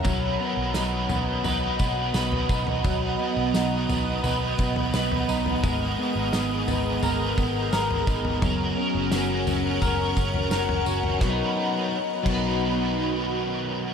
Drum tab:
CC |----------------|----------------|----------------|----------------|
TB |x---x-x-x-x-x-x-|x---x-x-x-x-x-x-|x---x-x-x-x-x-x-|x---x-x-x-x-x-x-|
SD |----o-------o---|----o-------o---|----o-------o---|----o-------o---|
FT |o-----o-o----o-o|o-----o-o--o-o-o|o-----o-o----o-o|o-----o-o--o-o-o|
BD |o---------o---o-|o---------o-----|o---------o---o-|o-------o-o-----|

CC |------x---------|
TB |----------------|
SD |o---------------|
FT |----------------|
BD |o-----o---------|